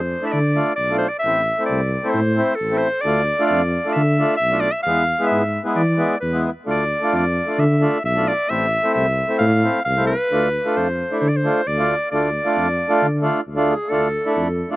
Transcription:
Already playing: F2 C5
0.22 A3 D4 E4
0.27 E5
0.32 D3 D5
0.55 A3 D4 F4
0.76 B1 D5
0.90 A3 D4 F4
0.98 C5
1.08 D5
1.19 E5
1.24 A1 A3 C4 E4
1.58 A3 C4 E4
1.66 D5
1.70 C2
2.04 A3 C4 E4
2.10 C5
2.14 A2
2.36 A3 C4 E4
2.55 A4
2.60 A1
2.70 A3 C4 E4
2.78 C5
3.01 D2 A3 D4 D5
3.06 F4
3.39 A3 D4 F4
3.46 F2 D5
3.85 A3 D4 F4
3.93 D3 E5
4.18 A3 D4 F4
4.37 E5
4.41 B1
4.51 A3 D4 F4
4.60 D5
4.72 E5
4.83 E2 G#3 B3 F5
4.88 E4
5.19 G#3 B3 E4
5.27 E5
5.31 G#2
5.64 G#3 B3 E4
5.75 E3 D5
5.97 G#3 B3 E4
6.20 E2 B4
6.32 G#3 B3 E4
6.65 D2 A3 D4 F4
6.70 D5
7.01 A3 D4 F4
7.13 F2 D5
7.46 A3 D4 F4
7.58 D3 E5
7.80 A3 D4 F4
8.04 B1 E5
8.15 A3 D4 F4
8.28 D5
8.49 A1 A3 C4 E4 E5
8.83 A3 C4 E4
8.94 C2 E5
9.28 A3 C4 E4
9.39 A2 F5
9.61 A3 C4 E4
9.85 C2 F5
9.96 A3 C4 E4
10.07 B4
10.31 D2 A3 D4 F4
10.64 A3 D4 F4
10.76 F2 C5
11.11 A3 D4 E4
11.20 D3 C5
11.28 D5
11.36 C5
11.43 A3 D4 F4
11.67 D2 D5
11.77 A3 D4 F4
12.11 D2 A3 D4 F4 D5
12.44 A3 D4 F4
12.57 F2
12.89 A3 D4 F4
13.02 D3
13.21 A3 D4 F4
13.47 D2
13.56 A3 D4 F4
13.69 G#4
13.89 D2 A3 D4 F4 A4
14.25 A3 D4 E4
14.35 F2 A4
14.70 A3 D4 F4

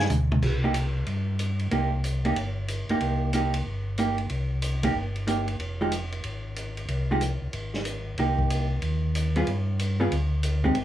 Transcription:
0.09 D2, hi-hat pedal, mid tom
0.32 mid tom
0.42 C2, kick, crash
0.64 A#3 D#4 G4
0.74 hi-hat pedal, ride
1.07 G2, ride
1.39 hi-hat pedal, ride
1.59 ride
1.71 C2 A#3 D#4 G4, ride
2.04 hi-hat pedal, ride
2.25 A#3 D#4 G4, ride
2.36 G1, ride
2.68 hi-hat pedal, ride
2.89 G1 A#3 D#4 G4, ride
3.01 C2, ride
3.33 A#3 D#4 G4, hi-hat pedal, ride
3.54 ride
3.65 G1
3.98 A#3 D#4 G4, hi-hat pedal, ride
4.18 ride
4.30 C2, ride
4.62 hi-hat pedal, ride
4.83 A#3 D#4 G4, kick, ride
4.95 G1
5.16 ride
5.27 A#3 D#4 G4, hi-hat pedal, ride
5.48 ride
5.60 F1, ride
5.81 F3 G#3 D#4 G4
5.92 hi-hat pedal, ride
6.12 ride
6.24 G#1, ride
6.56 hi-hat pedal, ride
6.77 ride
6.88 C2, ride
7.11 F3 G#3 D#4 G4
7.21 hi-hat pedal, ride
7.42 C2
7.53 G#1, ride
7.74 snare
7.85 hi-hat pedal, ride
8.18 C2 A#3 D#4 G4, ride
8.39 kick
8.50 hi-hat pedal, ride
8.82 D#2, ride
9.15 hi-hat pedal, ride
9.36 G3 B3 F4 G#4, ride
9.47 G2, ride
9.79 hi-hat pedal, ride
10.00 G3 B3 F4 G#4
10.11 D2, ride
10.43 hi-hat pedal, ride
10.64 G#3 C4 D#4 G4, kick
10.75 G#1, ride

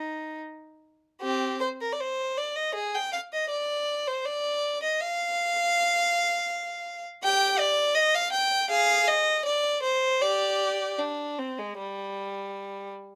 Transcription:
Already playing: D#4
1.21 C4 G4
1.61 C5
1.81 A#4
1.92 D5
2.00 C5
2.37 D5
2.56 D#5
2.74 G#4
2.95 G5
3.12 F5
3.33 D#5
3.50 D5
4.07 C5
4.25 D5
4.83 D#5
5.01 F5
7.23 G4 G5
7.59 D5
7.95 D#5
8.15 F5
8.32 G5
8.70 G#4 F5
9.08 D#5
9.45 D5
9.82 C5
10.22 G4 D5
10.98 D4
11.38 C4
11.59 G#3
11.78 G3

